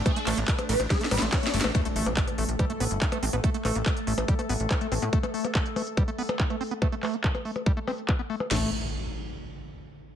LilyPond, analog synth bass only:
\new Staff \with { instrumentName = "Analog synth bass" } { \clef bass \time 4/4 \key c \major \tempo 4 = 142 r8 a,,16 a,,16 r8 a,,16 a,,16 r8 a,,16 a,,16 r8 g,,16 a,,16 | r8 a,,16 a,,16 r8 a,,16 a,,16 r8 a,,16 g,,16 r8 a,,16 a,,16 | r8 a,,16 a,,16 r8 a,,16 a,,16 r8 a,,16 a,,16 r8 a,,16 a,16 | r1 |
r1 | a,,8 r2. r8 | }